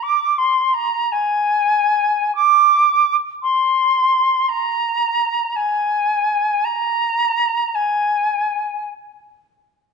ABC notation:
X:1
M:3/4
L:1/16
Q:1/4=55
K:Cm
V:1 name="Flute"
(3d'2 c'2 b2 a4 d'3 z | [K:Ab] c'4 b4 a4 | b4 a4 z4 |]